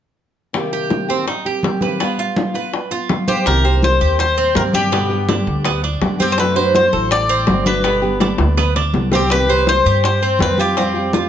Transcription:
0.53 C3 D#3 A#3 C4 G4, high bongo, high conga
0.73 G4, high conga
0.90 high bongo, high conga
1.08 D#3 A#3 C4 G4, high conga
1.26 D#4, muted nylon-string guitar stroke, high bongo, high conga
1.45 A#3 C4 G4, high conga
1.63 high bongo, low bongo, high conga
1.81 D#3 A#3 C4 G4 B4, high conga
1.99 G3 B3 F4, high bongo, high conga
2.18 F4, high bongo, high conga
2.36 high bongo, high conga
2.54 B3 F4 B4, high bongo, high conga
2.73 muted nylon-string guitar stroke, high bongo, high conga
2.91 B3 F4, high bongo, high conga
3.09 high bongo, low bongo, high conga
3.28 B3 F4 G4 C5, high conga
3.46 C2 C3 D#3 A#3 C4 G4 A#4, high bongo
3.64 D#3 A#3 C4 G4 C5, high conga
3.82 D#3 A#3 C4 G4 C5, high bongo, high conga
4.01 D#2 G4, high conga
4.18 C5, muted nylon-string guitar stroke, high bongo, high conga
4.37 C4, high conga
4.55 G2 D#3 A#3 C4 G4 A#4, high bongo, low bongo, high conga
4.73 D#3 A#3 C4 D4 G4, high conga
4.92 B2 D3 G3 B3 G4, high bongo
5.10 D3 G3 B3 G4, high bongo, high conga
5.28 D3 G3 B3 D4 G4, high bongo, high conga
5.47 D2, high bongo, high conga
5.65 B3, muted nylon-string guitar stroke, high bongo, high conga
5.83 D4, high bongo, high conga
6.01 F#2 D3 G3 B3 G4, high bongo, low bongo, high conga
6.18 D3 G3 B3 C4 G4, high conga
6.32 C5
6.38 C3 F#3 A3 D4 F#4 A4 B4, high bongo
6.56 F#3 A3 D4 F#4 C5, high conga
6.75 F#3 A3 D4 F#4 C5, high bongo, high conga
6.93 A1 A4, high conga
7.11 D5, muted nylon-string guitar stroke, high bongo, high conga
7.29 C4, high conga
7.47 G1 F#3 A3 D4 F#4, high bongo, low bongo, high conga
7.65 F#3 A3 D4 F#4 B4, high conga
7.84 B2 D3 G3 B3 G4, high bongo, high conga
8.02 D3 G3 B3 G4, high bongo, high conga
8.20 D3 G3 B3 D4 G4, high bongo, high conga
8.38 D2, high bongo, high conga
8.57 B3, muted nylon-string guitar stroke, low bongo, high conga
8.76 D4, low bongo, high conga
8.93 C2 D3 G3 B3 G4, low bongo, high conga
9.12 D3 G3 B3 C4 G4, low bongo, high conga
9.30 C3 D#3 G3 C4 G4 B4, high bongo, high conga
9.48 D#3 G3 C4 G4 C5, high conga
9.66 D#3 G3 C4 G4 C5, high bongo, high conga
9.85 G2 G4, high conga
10.03 C5, muted nylon-string guitar stroke, high bongo, high conga
10.21 C4, high conga
10.39 F2 D#3 G3 C4 G4 B4, high bongo, low bongo, high conga
10.58 D#3 G3 C4 F4 G4, high conga
10.76 F3 G3 C4 F4, high bongo, high conga
10.94 G3 C4 F4, high bongo, high conga
11.13 F3 G3 C4 F4, high bongo, high conga

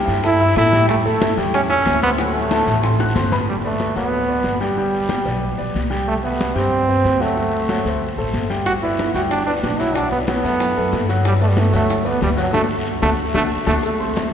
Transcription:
Already playing: G3 G4 G5
0.08 G2, high bongo, high conga, short guiro, maracas
0.24 A3 E4 A4 A5, high bongo, high conga, long guiro, maracas
0.40 E4 E5 E6, high bongo, high conga, maracas
0.56 A2 A3 E4 A4 A5, high bongo, low bongo, high conga, short guiro, maracas
0.72 G3 G4 G5, high bongo, high conga, short guiro, maracas
0.89 A3, high bongo, high conga, long guiro, maracas
1.05 A3 A4 A5, high conga, maracas
1.21 high bongo, high conga, short guiro, maracas
1.37 E2 G3 G4 G5, high conga, short guiro, maracas
1.54 C#4, high bongo, high conga, long guiro, maracas
1.69 C#4 E4 E5 E6, high conga, maracas
1.86 D2, high bongo, low bongo, high conga, short guiro, maracas
2.02 B3 C4 C5 C6, high conga, short guiro, maracas
2.18 F#3 A3 F#4 F#5, high bongo, high conga, long guiro, maracas
2.35 high conga, maracas
2.51 A3 A4 A5, high bongo, high conga, short guiro, maracas
2.67 A1, high bongo, high conga, short guiro, maracas
2.83 C4 C5 C6, high bongo, high conga, long guiro, maracas
2.99 F#4 F#5 F#6, high bongo, high conga, maracas
3.15 G1 C4 C5 C6, low bongo, high conga, short guiro, maracas
3.32 B3 B4 B5, low bongo, high conga, short guiro, maracas
3.48 G3, high conga, long guiro
3.64 A3 B3 B4 D5, high conga
3.80 high conga, short guiro
3.95 D2 F#3 B3 F#4 F#5, short guiro
4.12 high conga, long guiro
4.28 B3 B4 D5, high conga
4.44 G1, high conga, short guiro
4.60 G3 G4 G5, high conga, short guiro
4.77 G3 G4 G5, high conga, long guiro
4.94 high conga
5.09 G3 G4 G5, high conga, short guiro
5.25 B1 B3 B4 D5, high conga, short guiro
5.43 high conga, long guiro
5.58 B1 B3 B4 D5, high conga
5.75 C2, high conga, short guiro
5.90 G3 G4 G5, high conga, short guiro
6.08 A3, high conga, long guiro
6.24 B2 B3 B4 E5, high conga
6.41 high conga, short guiro
6.55 G2 G3 C4 G4 G5, short guiro
6.73 high conga, long guiro
6.88 C4 B4 C5, high conga
7.04 D2, high conga, short guiro
7.20 F#3 A3 F#4 F#5, high conga, short guiro
7.37 F#3 F#4 F#5, high conga, long guiro
7.53 high conga
7.69 F#3 F#4 F#5, high conga, short guiro
7.85 D2 A3 A4 C5, high conga, short guiro
8.02 high conga, long guiro
8.17 A1 A3 A4 C5, high conga
8.33 G1, high conga, short guiro
8.50 G3 G4 G5, high conga, short guiro
8.66 F#4, high bongo, high conga, long guiro, maracas
8.82 B3 E4 B4 D5, high bongo, high conga, maracas
8.98 high bongo, high conga, short guiro, maracas
9.14 D2 G3 F#4 G4 G5, high bongo, short guiro, maracas
9.30 D4, high bongo, high conga, long guiro, maracas
9.46 B3 D4 B4 D5, high bongo, high conga, maracas
9.63 B1 D4, high bongo, low bongo, high conga, short guiro, maracas
9.80 F#3 E4 F#4 F#5, high conga, short guiro, maracas
9.95 F#3 D4 F#4 F#5, high bongo, high conga, long guiro, maracas
10.11 B3, high bongo, high conga, maracas
10.28 F#3 B3 F#4 F#5, high bongo, high conga, short guiro, maracas
10.44 F#2 A3 A4 B4, high bongo, high conga, short guiro, maracas
10.60 high bongo, high conga, long guiro, maracas
10.76 F#2 A3 A4 B4, high bongo, high conga, maracas
10.92 G2, high bongo, low bongo, high conga, short guiro, maracas
11.09 F#3 F#4 F#5, high conga, short guiro, maracas
11.25 G3, high bongo, high conga, long guiro, maracas
11.41 A3 B3 B4 D5, high bongo, high conga, maracas
11.49 G3
11.57 A3, high bongo, high conga, short guiro, maracas
11.72 D2 F#3 A3 F#4 F#5, high bongo, short guiro, maracas
11.89 high bongo, high conga, long guiro, maracas
12.05 B3 B4 D5, high bongo, high conga, maracas
12.22 D2 G3, high bongo, low bongo, high conga, short guiro, maracas
12.37 F#3 F#4 F#5, high conga, short guiro, maracas
12.53 D2 A3 D4 F#4 A4, low bongo, high conga, long guiro, maracas
13.02 D2 A3 D4 F#4 A4, low bongo, high conga, long guiro, maracas
13.34 D2 A3 D4 F#4 A4, low bongo, high conga, long guiro, maracas
13.66 D2 A3 D4 F#4 A4, low bongo, high conga, long guiro, maracas
13.83 A3, cowbell, high conga, long guiro, maracas
14.00 A3 C4 C5 C6, high conga, maracas
14.16 cowbell, high conga, short guiro, maracas

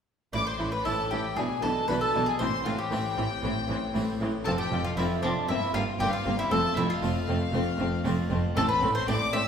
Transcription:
0.33 A1 A2 E3 E4 D5 D6
0.47 C5 C6
0.59 A1 A2 E3 E4
0.72 B4 B5
0.85 A1 A2 E3 C4 E4 A4 A5
1.11 A1 A2 E3 E4 G4 G5
1.36 B1 B2 E3 D4 G#4 G#5
1.62 B1 B2 E3 D4 A4 A5
1.88 B1 B2 E3 D4 E4 B4 B5
2.01 A4 A5
2.15 B1 B2 E3 D4
2.26 G#4 G#5
2.39 A1 A2 E3 C4 C5 C6
2.66 A1 A2 E3 C4 F4 F5
2.78 G4 G5
2.92 A1 A2 E3 A3 C4 E4
3.17 A1 A2 E3 C4
3.43 A1 A2 E3 C4
3.69 A1 A2 E3 C4
3.95 A1 A2 E3 A3 C4 E4
4.20 A1 A2 E3 C4
4.45 F1 F2 F3 C4 A4 A5
4.58 G4 G5
4.72 F1 F2 F3 C4
4.84 F4 F5
4.97 F1 F2 F3 C4 E4 F4 E5
5.23 F1 F2 F3 C4 D4 D5
5.48 G1 G2 A#3 C4 E4 E5
5.74 G1 G2 A#3 C4 F4 F5
5.99 G1 G2 A#3 C4 G4 G5
6.12 F4 F5
6.25 G1 G2 A#3 C4
6.39 E4 E5
6.51 F1 F2 A3 C4 A4 A5
6.76 F1 F2 A3 C4 E4 E5
6.90 F4 F5
7.02 F1 F2 A3 C4 F4
7.28 F1 F2 A3 C4
7.54 F1 F2 A3 C4
7.79 F1 F2 A3 C4
8.05 F1 F2 A3 C4 F4
8.30 F1 F2 A3 C4
8.56 A1 A2 A3 C4 A4 A5
8.69 B4 B5
8.82 A1 A2 A3 C4
8.95 C5 C6
9.08 A1 A2 A3 C4 E4 D5 D6
9.33 A1 A2 A3 C4 E5 E6

